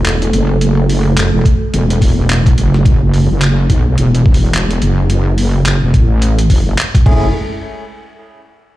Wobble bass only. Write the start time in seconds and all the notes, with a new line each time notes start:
Already playing: E1
0.33 F#1
1.17 F#1
1.34 E1
1.73 E1
2.57 F#1
2.85 F#1
3.30 F#1
3.70 B1
3.98 E1
4.82 F#1
5.66 F#1
5.83 E1
5.94 A1
6.50 F#1
7.06 F#1